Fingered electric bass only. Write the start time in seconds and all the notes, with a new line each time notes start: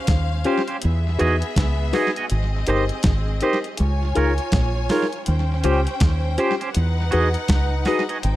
0.09 D#2
0.85 E2
1.21 E2
1.57 C#2
2.31 G#1
2.68 G1
3.05 G#1
3.80 C#2
4.17 C#2
4.53 A#1
5.28 D#2
5.65 C#2
6.01 D#2
6.76 E2
7.14 E2
7.50 C#2
8.24 G#1